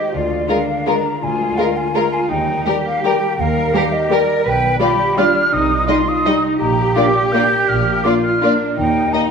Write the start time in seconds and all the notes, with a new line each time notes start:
Already playing: D#3 D#4 G4 G#4 C5 D#5
0.13 D2 D3 F4 D5
0.31 G#3
0.48 G#3 D4 F4 A#4 F5
0.68 A#4
0.86 G#3 F4 G#4 A#4 A#5
1.05 A#4
1.22 D2 D3 F4 G#5
1.40 G#3
1.57 G#3 F4 A#4 F5
1.77 A#4 G#5
1.94 G#3 F4 G#4 A#4 A#5
2.13 A#4 G#5
2.30 D#2 D#3 D#4 G5
2.48 G3
2.66 G3 G4 A#4
2.85 A#4 F5
3.04 G3 G4 A#4 G5
3.22 A#4
3.38 D#2 D#3 A#4 F5
3.56 G3
3.74 G3 G4 A#4
3.92 A#4 D#5
4.09 G3 G4 A#4 D5
4.29 A#4
4.45 B1 B2 B4 G5
4.62 G3
4.79 G3 F4 G4 D5 B5
4.99 D5
5.17 G3 D4 F4 G4 D5 F6
5.35 D5
5.52 C2 C3 D#4 D#6
5.70 G3
5.87 G3 D#4 F4 D#5 C6
6.08 D#5 D#6
6.24 G3 D#4 G4 D#5
6.43 D#5
6.60 A#1 A#2 G4 A#5
6.77 A#3
6.95 A#3 D4 F4 D5 D6
7.14 D5
7.32 A#3 D4 F4 A#4 D5 G6
7.68 A#1 A#2 F6
7.85 A#3
8.03 A#3 D4 F4 D5 D6
8.23 D5 F6
8.42 A#3 D4 F4 A#4 D5
8.59 D5
8.77 D#2 D#3 D#4 G5
8.94 D#4
9.13 A#3 D#4 D#5 A#5